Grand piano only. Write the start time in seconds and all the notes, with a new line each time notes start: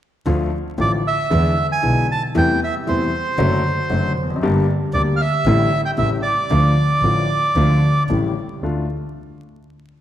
0.26 D2 D3 F3 A3 F4
0.78 A1 A2 D3 F3 A3 F4
1.30 E2 D3 E3 G#3 B3 E4
1.83 B1 B2 D3 G#3 B3 E4
2.34 E2 C3 E3 G3 A3 E4
2.86 E2 C3 E3 G3 A3 E4
3.38 F#2 D3 F#3 A3 F#4
3.90 F#2 D3 F#3 A3 F#4
4.23 E2
4.30 F2
4.36 F#2
4.42 G1 G2 D3 G3 A#3 G4
4.94 D2 D3 G3 A#3 G4
5.46 A1 A2 D3 G3 A3 E4
5.97 A1 A2 C#3 G3 A3 E4
6.50 D2 D3 F3 A3 F4
7.03 A1 A2 D3 F3 A3 F4
7.56 D2 D3 F3 A3 F4
8.10 A1 A2 C#3 G3 A3 E4
8.63 D2 A3 D4 F4